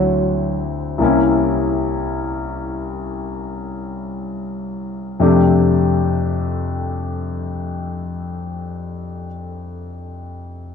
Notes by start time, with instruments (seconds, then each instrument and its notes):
Already playing: grand piano D2 D3 C4 E4 F#4, trombone F#3
0.98 grand piano C2 C3 A#3 C#4
1.04 grand piano E4
5.20 grand piano F2 C3 A3 D4 G4